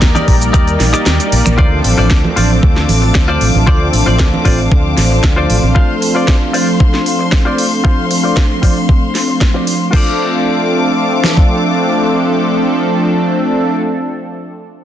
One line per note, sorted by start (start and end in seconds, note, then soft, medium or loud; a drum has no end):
0.00 0.77 G3 loud
0.00 0.77 A#3 medium
0.00 0.77 D#4 medium
0.00 0.78 A#4 loud
0.00 0.77 D5 medium
0.00 1.55 D5 medium
0.00 1.54 G5 medium
0.00 kick loud
0.00 snare loud
0.00 closed hi-hat medium
0.00 shaker medium
0.15 0.34 D#4 medium
0.15 0.35 G4 medium
0.15 0.35 A#4 medium
0.15 0.35 D5 medium
0.15 closed hi-hat soft
0.15 high conga loud
0.15 shaker soft
0.28 0.49 A#1 medium
0.28 kick medium
0.28 open hi-hat loud
0.41 closed hi-hat medium
0.41 shaker medium
0.53 0.75 D#2 medium
0.53 0.73 D#4 medium
0.53 0.74 G4 medium
0.53 0.74 A#4 medium
0.53 0.74 D5 medium
0.53 kick loud
0.53 closed hi-hat medium
0.53 shaker medium
0.67 closed hi-hat soft
0.67 shaker soft
0.79 0.91 A#1 loud
0.79 1.55 G3 medium
0.79 1.55 A#3 medium
0.79 1.56 D#4 medium
0.79 1.56 A#4 medium
0.79 1.55 D5 medium
0.79 snare soft
0.79 open hi-hat loud
0.79 high conga medium
0.93 1.19 D#4 medium
0.93 1.20 G4 medium
0.93 1.20 A#4 medium
0.93 1.20 D5 loud
0.93 finger snap medium
0.93 muted fingered electric bass stroke soft
0.93 closed hi-hat soft
0.93 shaker medium
1.06 1.17 D#2 loud
1.06 snare loud
1.06 closed hi-hat medium
1.06 shaker medium
1.20 closed hi-hat medium
1.20 shaker soft
1.32 1.43 A#1 loud
1.32 open hi-hat loud
1.45 1.56 A#1 medium
1.45 finger snap medium
1.45 muted clean electric guitar stroke soft
1.45 closed hi-hat soft
1.45 high conga medium
1.45 shaker medium
1.58 1.80 D2 medium
1.58 2.85 F3 loud
1.58 2.86 A3 medium
1.58 2.86 C4 medium
1.58 2.86 D4 medium
1.58 1.78 F4 loud
1.58 2.86 A4 loud
1.58 1.78 C5 loud
1.58 9.89 C5 medium
1.58 1.79 D5 loud
1.58 9.89 F5 medium
1.58 5.72 D6 medium
1.58 kick loud
1.84 1.95 A1 medium
1.84 open hi-hat loud
1.98 2.08 A1 medium
1.98 2.17 F4 medium
1.98 2.17 C5 medium
1.98 2.18 D5 medium
2.11 kick loud
2.11 snare loud
2.24 high conga medium
2.36 2.58 A1 medium
2.36 2.50 F4 medium
2.36 2.50 C5 medium
2.36 2.51 D5 medium
2.36 open hi-hat loud
2.63 2.84 D2 medium
2.63 muted clean electric guitar stroke soft
2.63 kick loud
2.76 snare soft
2.88 3.10 A1 medium
2.88 3.64 F3 medium
2.88 3.64 A3 medium
2.88 3.64 C4 medium
2.88 3.64 D4 medium
2.88 3.65 A4 medium
2.88 open hi-hat loud
2.88 high conga medium
3.02 muted clean electric guitar stroke soft
3.15 muted clean electric guitar stroke medium
3.15 kick loud
3.15 snare loud
3.28 3.48 F4 loud
3.28 3.48 C5 medium
3.28 3.48 D5 loud
3.41 3.52 A1 medium
3.41 open hi-hat loud
3.54 3.65 A1 medium
3.54 high conga medium
3.66 4.94 F3 medium
3.66 4.94 A3 medium
3.66 4.95 C4 medium
3.66 4.95 D4 medium
3.66 3.87 F4 loud
3.66 4.95 A4 loud
3.66 3.87 C5 loud
3.66 3.87 D5 loud
3.66 kick loud
3.93 4.04 A1 medium
3.93 open hi-hat loud
4.06 4.17 A1 medium
4.06 4.26 F4 medium
4.06 4.26 C5 medium
4.06 4.27 D5 medium
4.19 kick loud
4.19 snare loud
4.34 high conga medium
4.45 4.67 A1 medium
4.45 4.59 F4 medium
4.45 4.59 C5 medium
4.45 4.59 D5 medium
4.45 kick medium
4.45 open hi-hat loud
4.71 muted clean electric guitar stroke soft
4.71 kick loud
4.97 5.19 A1 medium
4.97 5.72 F3 medium
4.97 5.73 A3 medium
4.97 5.73 C4 medium
4.97 5.73 D4 medium
4.97 5.73 A4 medium
4.97 snare soft
4.97 open hi-hat loud
4.97 high conga medium
5.11 muted clean electric guitar stroke soft
5.23 5.45 D2 medium
5.23 muted clean electric guitar stroke medium
5.23 kick loud
5.23 snare loud
5.36 5.56 F4 loud
5.36 5.57 C5 medium
5.36 5.57 D5 loud
5.50 5.61 A1 medium
5.50 open hi-hat loud
5.63 5.73 A1 medium
5.63 high conga medium
5.75 7.03 F3 medium
5.75 7.03 A3 medium
5.75 7.03 C4 medium
5.75 7.03 D4 medium
5.75 5.95 F4 loud
5.75 7.04 A4 loud
5.75 5.96 C5 medium
5.75 5.96 F5 loud
5.75 9.89 C6 medium
5.75 kick loud
6.02 open hi-hat medium
6.15 6.34 F4 medium
6.15 6.35 C5 medium
6.15 6.35 D5 medium
6.28 kick loud
6.28 snare loud
6.53 6.67 F4 medium
6.53 6.68 C5 medium
6.53 6.68 D5 medium
6.53 open hi-hat loud
6.80 muted clean electric guitar stroke soft
6.80 kick loud
6.94 snare soft
7.05 7.81 F3 medium
7.05 7.81 A3 medium
7.05 7.82 C4 medium
7.05 7.82 D4 medium
7.05 7.82 A4 medium
7.05 open hi-hat loud
7.19 muted clean electric guitar stroke soft
7.32 muted clean electric guitar stroke medium
7.32 kick loud
7.32 snare loud
7.45 7.65 F4 loud
7.45 7.65 C5 loud
7.45 7.66 D5 loud
7.58 open hi-hat loud
7.83 9.11 F3 medium
7.83 9.12 A3 medium
7.83 9.12 C4 medium
7.83 9.12 D4 medium
7.83 8.04 F4 loud
7.83 9.12 A4 loud
7.83 8.04 C5 medium
7.83 8.05 F5 loud
7.83 kick loud
8.11 open hi-hat loud
8.23 8.43 F4 medium
8.23 8.43 C5 medium
8.23 8.44 D5 medium
8.37 kick loud
8.37 snare loud
8.62 8.76 F4 medium
8.62 8.76 C5 medium
8.62 8.77 D5 medium
8.62 kick medium
8.62 open hi-hat loud
8.88 muted clean electric guitar stroke soft
8.88 kick loud
9.14 9.90 F3 medium
9.14 9.90 A3 medium
9.14 9.90 C4 medium
9.14 9.90 D4 medium
9.14 9.91 A4 medium
9.14 snare soft
9.14 open hi-hat loud
9.28 muted clean electric guitar stroke soft
9.40 muted clean electric guitar stroke medium
9.40 kick loud
9.40 snare loud
9.54 9.74 F4 loud
9.54 9.74 C5 medium
9.54 9.74 D5 loud
9.67 open hi-hat loud
9.90 13.70 F3 medium
9.90 13.70 A3 medium
9.90 13.71 C4 medium
9.90 13.72 D4 medium
9.90 13.68 F4 medium
9.90 13.70 C5 medium
9.90 13.71 C5 medium
9.90 13.71 F5 medium
9.90 13.71 D6 medium
9.90 kick loud
9.90 crash medium
9.95 13.72 A4 medium
9.95 13.74 D5 medium
11.24 snare medium
11.37 kick medium